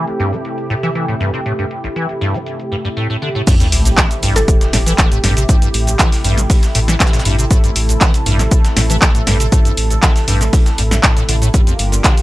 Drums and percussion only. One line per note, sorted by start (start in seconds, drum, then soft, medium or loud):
0.08 closed hi-hat soft
0.08 shaker soft
0.20 closed hi-hat medium
0.33 closed hi-hat soft
0.33 shaker medium
0.45 closed hi-hat medium
0.45 shaker soft
0.58 closed hi-hat soft
0.58 shaker soft
0.83 closed hi-hat soft
0.83 shaker medium
0.95 closed hi-hat medium
0.95 shaker soft
1.08 closed hi-hat soft
1.08 shaker soft
1.20 closed hi-hat medium
1.34 closed hi-hat soft
1.34 shaker medium
1.46 closed hi-hat medium
1.46 shaker soft
1.59 closed hi-hat soft
1.59 shaker soft
1.71 closed hi-hat medium
1.84 closed hi-hat soft
1.84 shaker medium
1.96 closed hi-hat medium
1.96 shaker soft
2.09 closed hi-hat soft
2.09 shaker soft
2.21 closed hi-hat medium
2.34 closed hi-hat soft
2.34 shaker medium
2.46 closed hi-hat medium
2.46 shaker soft
2.60 closed hi-hat soft
2.60 shaker soft
2.85 closed hi-hat soft
2.85 shaker medium
2.97 closed hi-hat medium
2.97 shaker soft
3.10 closed hi-hat soft
3.10 shaker soft
3.22 closed hi-hat medium
3.35 closed hi-hat soft
3.35 shaker medium
3.47 kick loud
3.47 closed hi-hat medium
3.47 crash loud
3.47 shaker medium
3.60 closed hi-hat soft
3.60 shaker soft
3.72 open hi-hat loud
3.72 shaker medium
3.85 closed hi-hat soft
3.85 shaker medium
3.98 kick loud
3.98 snare loud
3.98 clap loud
3.98 closed hi-hat medium
3.98 shaker medium
4.11 closed hi-hat soft
4.11 shaker soft
4.23 open hi-hat loud
4.23 shaker medium
4.36 snare soft
4.36 closed hi-hat soft
4.36 shaker medium
4.48 kick loud
4.48 closed hi-hat medium
4.48 shaker medium
4.61 snare medium
4.61 closed hi-hat soft
4.61 shaker soft
4.73 snare medium
4.73 open hi-hat loud
4.73 shaker medium
4.86 open hi-hat medium
4.86 shaker medium
4.98 kick loud
4.98 snare loud
4.98 clap loud
4.98 closed hi-hat medium
4.98 shaker medium
5.12 closed hi-hat soft
5.12 shaker soft
5.24 snare medium
5.24 open hi-hat loud
5.24 shaker medium
5.37 closed hi-hat soft
5.37 shaker medium
5.49 kick loud
5.49 closed hi-hat medium
5.49 shaker medium
5.62 closed hi-hat soft
5.62 shaker soft
5.74 open hi-hat loud
5.74 shaker medium
5.87 closed hi-hat soft
5.87 shaker medium
5.99 kick loud
5.99 snare soft
5.99 snare loud
5.99 clap loud
5.99 closed hi-hat medium
5.99 shaker medium
6.12 snare soft
6.12 open hi-hat medium
6.12 shaker soft
6.24 open hi-hat loud
6.24 shaker medium
6.38 snare soft
6.38 closed hi-hat soft
6.38 shaker medium
6.50 kick loud
6.50 closed hi-hat medium
6.50 open hi-hat medium
6.50 shaker medium
6.63 snare soft
6.63 closed hi-hat soft
6.63 shaker soft
6.75 open hi-hat loud
6.75 shaker medium
6.88 snare medium
6.88 closed hi-hat soft
6.88 shaker medium
7.00 kick loud
7.00 snare medium
7.00 clap loud
7.00 closed hi-hat medium
7.00 shaker medium
7.07 snare medium
7.07 shaker medium
7.13 snare medium
7.13 closed hi-hat soft
7.13 shaker medium
7.13 shaker soft
7.19 snare medium
7.19 shaker medium
7.25 open hi-hat loud
7.25 shaker medium
7.39 closed hi-hat soft
7.39 shaker medium
7.51 kick loud
7.51 closed hi-hat medium
7.51 shaker medium
7.64 closed hi-hat soft
7.64 shaker soft
7.76 open hi-hat loud
7.76 shaker medium
7.89 closed hi-hat soft
7.89 shaker medium
8.01 kick loud
8.01 snare loud
8.01 clap loud
8.01 closed hi-hat medium
8.01 shaker medium
8.14 closed hi-hat soft
8.14 shaker soft
8.26 open hi-hat loud
8.26 shaker medium
8.39 snare soft
8.39 closed hi-hat soft
8.39 shaker medium
8.51 kick loud
8.51 closed hi-hat medium
8.51 shaker medium
8.65 snare medium
8.65 closed hi-hat soft
8.65 shaker soft
8.77 snare medium
8.77 open hi-hat loud
8.77 shaker medium
8.90 open hi-hat medium
8.90 shaker medium
9.02 kick loud
9.02 snare loud
9.02 clap loud
9.02 closed hi-hat medium
9.02 shaker medium
9.15 closed hi-hat soft
9.15 shaker soft
9.27 snare medium
9.27 open hi-hat loud
9.27 shaker medium
9.40 closed hi-hat soft
9.40 shaker medium
9.52 kick loud
9.52 closed hi-hat medium
9.52 shaker medium
9.65 closed hi-hat soft
9.65 shaker soft
9.77 open hi-hat loud
9.77 shaker medium
9.90 closed hi-hat soft
9.90 shaker medium
10.03 kick loud
10.03 snare soft
10.03 snare loud
10.03 clap loud
10.03 closed hi-hat medium
10.03 shaker medium
10.16 snare soft
10.16 open hi-hat medium
10.16 shaker soft
10.28 open hi-hat loud
10.28 shaker medium
10.41 snare soft
10.41 closed hi-hat soft
10.41 shaker medium
10.53 kick loud
10.53 closed hi-hat medium
10.53 open hi-hat medium
10.53 shaker medium
10.66 snare soft
10.66 closed hi-hat soft
10.66 shaker soft
10.78 open hi-hat loud
10.78 shaker medium
10.91 snare medium
10.91 closed hi-hat soft
10.91 shaker medium
11.03 kick loud
11.03 snare loud
11.03 clap loud
11.03 closed hi-hat medium
11.03 shaker medium
11.17 snare soft
11.17 closed hi-hat soft
11.17 shaker soft
11.29 open hi-hat loud
11.29 shaker medium
11.42 closed hi-hat soft
11.42 shaker medium
11.54 kick loud
11.54 closed hi-hat medium
11.54 shaker medium
11.67 closed hi-hat soft
11.67 shaker soft
11.79 open hi-hat loud
11.79 shaker medium
11.92 closed hi-hat soft
11.92 shaker medium
12.04 kick loud
12.04 snare loud
12.04 clap loud
12.04 closed hi-hat medium
12.04 shaker medium
12.17 closed hi-hat soft
12.17 shaker soft